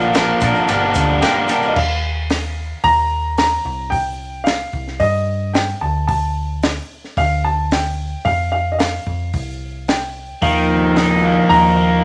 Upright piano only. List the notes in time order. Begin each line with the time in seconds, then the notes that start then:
Already playing: A5
1.21 G5
1.68 D#5
1.76 F5
2.84 A#5
3.38 A#5
3.90 G5
4.44 F5
5.00 D#5
5.54 G5
5.81 A5
6.07 A5
7.18 F5
7.44 A5
7.72 G5
8.25 F5
8.52 F5
8.72 D#5
8.79 F5
9.88 G5
10.43 F5
11.49 A#5